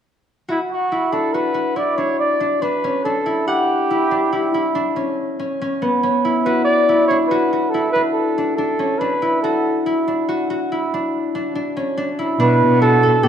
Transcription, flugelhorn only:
0.50 0.59 E4 medium
0.72 1.14 F#4 medium
1.12 1.35 A4 medium
1.34 1.78 B4 medium
1.77 1.98 D5 medium
1.97 2.18 C#5 medium
2.19 2.63 D5 medium
2.62 3.04 B4 medium
3.04 3.44 A4 medium
3.48 4.71 G4 medium
6.45 6.64 B4 medium
6.65 7.05 D5 medium
7.08 7.18 C#5 medium
7.27 7.71 B4 medium
7.70 7.92 A4 medium
7.92 8.02 B4 medium
8.13 8.54 A4 medium
8.56 9.00 A4 medium
8.99 9.42 B4 medium
9.42 9.82 A4 medium
12.41 12.80 B4 medium
12.81 13.25 A4 medium
13.24 13.28 G4 medium

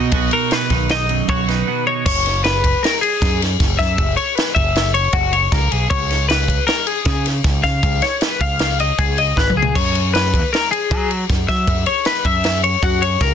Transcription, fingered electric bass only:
0.00 0.10 B2 medium
0.12 0.29 B1 loud
0.70 1.21 B1 medium
1.28 1.62 B1 loud
2.06 2.73 F#1 loud
3.22 3.55 F#2 loud
3.60 3.77 F#1 loud
3.79 3.96 F#2 medium
3.98 4.15 F#1 loud
4.56 5.06 F#1 medium
5.13 5.47 F#1 loud
5.52 5.69 C#2 loud
5.72 5.89 B1 medium
5.91 6.58 C#2 loud
7.06 7.39 C#3 loud
7.44 7.61 C#2 loud
7.63 7.80 C#3 medium
7.83 8.00 C#2 loud
8.41 8.90 C#2 medium
8.99 9.32 C#2 loud
9.37 9.53 G#1 medium
9.55 9.72 C#2 medium
9.76 10.42 F#2 loud
10.91 11.24 F#3 loud
11.29 11.46 F#2 loud
11.49 11.65 F#3 medium
11.67 11.84 F#2 loud
12.25 12.75 F#2 medium
12.83 13.16 F#2 loud
13.21 13.34 C#2 loud

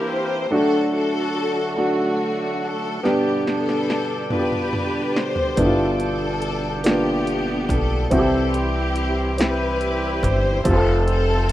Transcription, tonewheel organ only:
0.00 0.47 E3 medium
0.00 0.47 A#3 soft
0.00 0.47 C4 soft
0.00 0.47 G4 medium
0.50 3.00 D3 medium
0.50 3.00 F#3 soft
0.50 3.00 A3 soft
0.50 3.01 F#4 medium
3.03 8.07 D3 medium
3.03 8.07 G3 soft
3.03 3.10 A#3 soft
3.03 8.07 G4 medium
3.10 8.11 B2 medium
8.12 10.61 E3 medium
8.12 10.62 G3 medium
8.12 10.61 C4 medium
8.12 10.62 G4 medium
10.64 11.52 F3 medium
10.64 11.52 A3 soft
10.64 11.52 C4 soft
10.64 11.52 A4 medium

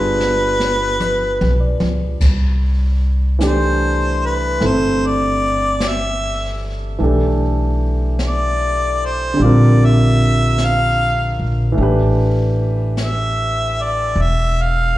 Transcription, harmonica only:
0.00 1.84 B4 medium
3.47 4.28 C5 medium
4.26 4.67 B4 medium
4.66 5.08 C5 medium
5.07 5.89 D5 medium
5.88 6.65 E5 medium
8.26 9.07 D5 medium
9.06 9.45 C5 medium
9.44 9.87 D5 medium
9.85 10.66 E5 medium
10.64 11.42 F5 medium
13.03 13.84 E5 medium
13.82 14.23 D5 medium
14.22 14.63 E5 medium
14.62 14.98 F5 medium

